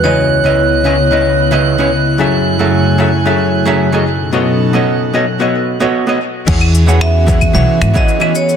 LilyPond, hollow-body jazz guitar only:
\new Staff \with { instrumentName = "Hollow-body jazz guitar" } { \time 4/4 \key e \major \tempo 4 = 112 <cis cis' e' b' dis''>8. <cis cis' e' b' dis''>8. <cis cis' e' b' dis''>16 r16 <cis cis' e' b' dis''>8. <cis cis' e' b' dis''>8 <cis cis' e' b' cis''>16 r8 | <fis cis' gis' a' e''>8. <fis cis' gis' a' e''>8. <fis cis' gis' a' e''>16 r16 <fis cis' gis' a' e''>8. <fis cis' gis' a' e''>8 <fis cis' gis' a' dis''>16 r8 | <b fis' a' cis'' dis''>8. <b fis' a' cis'' dis''>8. <b fis' a' cis'' dis''>16 r16 <b fis' a' cis'' dis''>8. <b fis' a' cis'' dis''>8 <b fis' a' cis'' dis''>16 r8 | <e e' gis' cis'' fis''>8. <e e' gis' cis'' fis''>8. <e e' gis' cis'' fis''>16 r16 <e e' gis' cis'' fis''>8. <e e' gis' cis'' fis''>8 <e e' gis' cis'' e''>16 r8 | }